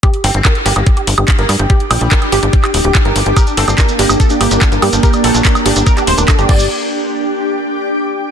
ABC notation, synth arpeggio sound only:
X:1
M:4/4
L:1/16
Q:1/4=144
K:Gm
V:1 name="Synth arpeggio sound"
G z g z B z G G z G z G z B z g | G z g z B z G G z G z G z B z g | G z g z B z G G z G z G z B z g | G z g z B z G G z G z B A G G2 |
z16 |]